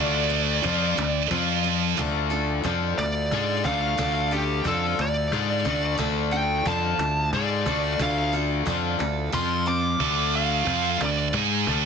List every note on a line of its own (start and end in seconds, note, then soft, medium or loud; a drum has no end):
0.00 0.60 D2 medium
0.00 0.28 D3 medium
0.00 0.63 D3 medium
0.00 0.63 A3 loud
0.00 0.28 D4 medium
0.00 0.63 D4 loud
0.00 0.29 F4 medium
0.00 1.28 D5 medium
0.30 0.60 D3 medium
0.30 0.61 D4 medium
0.63 0.95 F2 medium
0.63 0.94 D3 medium
0.63 0.96 F3 medium
0.63 0.97 C4 medium
0.63 0.94 D4 medium
0.63 0.97 F4 loud
0.63 cajon bass loud
0.97 1.29 D2 medium
0.97 1.28 D3 medium
0.97 1.25 D3 medium
0.97 1.25 A3 medium
0.97 1.28 D4 medium
0.97 cajon slap loud
1.30 1.94 F2 loud
1.30 1.96 F3 loud
1.30 1.62 F3 medium
1.30 1.62 C4 medium
1.30 1.97 C4 loud
1.30 1.97 F4 loud
1.30 1.63 F4 medium
1.30 cajon bass loud
1.64 1.94 F3 medium
1.64 1.94 C4 medium
1.64 cajon slap soft
1.97 2.61 D2 medium
1.97 2.63 D3 medium
1.97 2.64 D3 medium
1.97 2.64 A3 loud
1.97 2.31 D4 medium
1.97 2.64 D4 loud
1.97 2.31 F4 medium
1.97 2.30 A4 medium
1.97 cajon bass loud
2.30 2.64 D4 medium
2.30 2.64 F4 medium
2.30 2.65 A4 medium
2.64 2.96 F2 medium
2.64 3.97 D3 medium
2.64 2.97 F3 medium
2.64 2.98 C4 medium
2.64 3.65 D4 medium
2.64 2.98 F4 medium
2.64 2.98 F4 loud
2.64 3.64 A4 medium
2.64 cajon bass loud
2.98 3.29 D2 medium
2.98 3.25 D3 medium
2.98 3.25 A3 medium
2.98 3.31 F4 medium
2.98 3.65 D5 loud
2.98 cajon slap loud
3.31 3.63 G#2 medium
3.31 3.64 G#3 medium
3.31 3.65 D#4 medium
3.31 3.65 F4 medium
3.31 3.65 G#4 loud
3.31 cajon bass loud
3.64 3.96 D2 medium
3.64 3.97 D3 medium
3.64 3.98 A3 medium
3.64 3.98 D4 medium
3.64 3.99 F4 medium
3.64 3.99 A4 medium
3.64 4.34 F5 loud
3.64 cajon bass loud
3.98 4.61 D2 medium
3.98 4.64 D3 medium
3.98 4.65 A3 medium
3.98 4.33 D4 medium
3.98 4.65 D4 loud
3.98 4.32 F4 medium
3.98 4.31 A4 medium
3.98 cajon bass loud
4.31 4.65 D4 medium
4.31 4.65 F4 medium
4.31 4.63 G4 medium
4.31 4.66 A4 medium
4.64 4.96 F2 loud
4.64 5.97 D3 medium
4.64 4.98 F3 medium
4.64 4.98 C4 medium
4.64 5.66 D4 medium
4.64 4.99 F4 medium
4.64 4.98 F4 loud
4.64 5.64 A4 medium
4.64 5.01 A4 medium
4.64 cajon bass loud
4.98 5.30 D2 medium
4.98 5.26 D3 medium
4.98 5.26 A3 medium
4.98 5.33 F4 medium
4.98 5.96 D5 medium
4.98 cajon slap loud
5.32 5.63 G#2 medium
5.32 5.65 G#3 medium
5.32 5.65 D#4 loud
5.32 5.65 F4 medium
5.32 5.65 G#4 medium
5.32 cajon bass loud
5.65 5.97 D2 loud
5.65 5.98 D3 medium
5.65 5.98 A3 medium
5.65 5.98 D4 medium
5.65 5.99 F4 medium
5.65 5.99 A4 medium
5.65 cajon bass loud
5.98 6.62 D2 medium
5.98 6.64 D3 medium
5.98 6.65 D3 medium
5.98 6.65 A3 medium
5.98 6.32 D4 medium
5.98 6.65 D4 medium
5.98 6.32 F4 medium
5.98 6.30 A4 medium
5.98 cajon bass loud
6.31 6.65 D4 medium
6.31 6.66 F4 medium
6.31 6.66 A4 medium
6.31 6.67 G5 medium
6.31 cajon slap soft
6.65 6.97 F2 loud
6.65 7.33 D3 medium
6.65 6.98 F3 medium
6.65 6.98 C4 medium
6.65 7.33 D4 medium
6.65 6.99 F4 loud
6.65 6.99 F4 medium
6.65 7.33 A4 medium
6.65 7.30 A5 loud
6.65 cajon bass loud
6.98 7.30 D2 medium
6.98 7.26 D3 medium
6.98 7.26 A3 medium
6.98 7.33 F4 medium
6.98 cajon slap medium
7.33 7.64 G#2 medium
7.33 7.66 G#3 medium
7.33 7.66 D#4 medium
7.33 7.66 F4 medium
7.33 7.66 G#4 medium
7.33 8.02 D5 medium
7.33 cajon bass loud
7.66 7.97 D2 medium
7.66 7.99 D3 medium
7.66 7.99 A3 medium
7.66 7.99 D4 medium
7.66 7.99 F4 medium
7.66 8.00 A4 medium
7.66 cajon bass loud
7.99 8.62 D2 medium
7.99 8.64 D3 medium
7.99 8.66 D3 medium
7.99 8.66 A3 medium
7.99 8.33 D4 medium
7.99 8.66 D4 loud
7.99 8.32 F4 medium
7.99 8.31 A4 medium
7.99 8.32 F5 medium
7.99 cajon bass loud
8.33 8.65 D4 medium
8.33 8.66 F4 medium
8.33 8.66 A4 medium
8.33 cajon slap soft
8.66 8.98 F2 loud
8.66 9.31 D3 medium
8.66 8.99 F3 medium
8.66 8.99 C4 loud
8.66 9.00 D4 medium
8.66 8.99 F4 medium
8.66 8.98 A4 medium
8.66 cajon bass loud
8.99 9.31 D2 medium
8.99 9.27 D3 medium
8.99 9.27 A3 medium
8.99 9.32 D4 medium
8.99 9.31 F4 medium
8.99 9.31 A4 medium
8.99 cajon slap loud
9.32 9.96 F2 medium
9.32 9.98 F3 loud
9.32 9.99 F3 medium
9.32 9.99 C4 medium
9.32 9.67 C4 medium
9.32 9.66 F4 medium
9.32 9.99 F4 loud
9.32 9.65 C5 medium
9.32 9.67 C6 medium
9.32 cajon bass loud
9.66 9.99 C4 medium
9.66 9.98 F4 medium
9.66 9.98 C5 medium
9.66 10.36 D6 loud
9.66 cajon slap soft
10.00 10.63 D2 medium
10.00 10.66 D3 medium
10.00 10.66 A3 medium
10.00 10.66 D4 loud
10.00 cajon bass loud
10.35 11.03 F5 loud
10.66 10.98 F2 medium
10.66 10.99 F3 medium
10.66 11.00 C4 medium
10.66 11.00 F4 medium
10.66 cajon bass loud
11.01 11.32 D2 medium
11.01 11.27 D3 medium
11.01 11.27 A3 medium
11.01 11.33 D5 medium
11.01 cajon slap loud
11.33 11.65 G#2 medium
11.33 11.66 G#3 medium
11.33 11.67 D#4 medium
11.33 11.67 G#4 loud
11.33 cajon bass loud
11.67 11.85 D2 loud
11.67 11.85 D3 loud
11.67 11.85 A3 medium
11.67 11.85 D4 loud
11.67 cajon bass loud